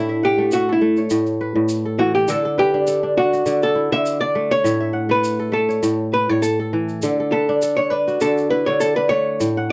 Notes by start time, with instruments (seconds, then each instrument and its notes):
Already playing: kora A2 A3 D4 E4, hollow-body jazz guitar E4
0.09 kora E5
0.23 hollow-body jazz guitar G4, kora F#5
0.38 kora A3
0.51 hollow-body jazz guitar F#4, kora E5, shaker
0.69 hollow-body jazz guitar E4, kora A4
0.81 kora A3
0.97 kora C#5, shaker
1.10 kora A2, shaker
1.26 shaker
1.41 kora B4
1.56 kora A2
1.69 shaker
1.85 kora A4
1.99 kora E3, hollow-body jazz guitar F#4
2.15 hollow-body jazz guitar G4
2.28 kora D3 A4, hollow-body jazz guitar A4, shaker
2.45 kora A4
2.58 hollow-body jazz guitar G4, kora B4
2.74 kora D4
2.87 kora A4, shaker
3.03 kora D4
3.17 kora D4, hollow-body jazz guitar F#4
3.33 kora F#4, shaker
3.46 kora D3, shaker
3.62 hollow-body jazz guitar A4, shaker
3.75 kora E4
3.92 kora D3, hollow-body jazz guitar E5
4.06 shaker
4.21 kora D4, hollow-body jazz guitar D5
4.35 kora A3
4.51 hollow-body jazz guitar C#5
4.64 kora A2 E5, shaker
4.80 kora E5
4.93 kora F#5
5.09 kora A3, hollow-body jazz guitar B4
5.24 shaker
5.40 kora A4
5.52 kora A3, hollow-body jazz guitar A4
5.69 kora C#5, shaker
5.83 kora A2, shaker
6.13 kora B4, hollow-body jazz guitar B4
6.29 kora A2, hollow-body jazz guitar C#5
6.42 hollow-body jazz guitar A4, shaker
6.60 kora A4
6.73 kora E3
6.89 shaker
7.02 kora D3 A4, shaker
7.20 kora A4
7.32 hollow-body jazz guitar A4, kora B4
7.49 kora D4
7.62 kora A4, shaker
7.77 kora D4, hollow-body jazz guitar C#5
7.90 kora D4, hollow-body jazz guitar B4
8.08 kora F#4, shaker
8.21 kora D3, hollow-body jazz guitar A4, shaker
8.38 shaker
8.50 kora E4, hollow-body jazz guitar B4
8.66 kora D3, hollow-body jazz guitar C#5
8.80 hollow-body jazz guitar A4, shaker
8.96 kora D4, hollow-body jazz guitar B4
9.09 kora A3, hollow-body jazz guitar C#5
9.40 kora A2, shaker
9.57 kora F#5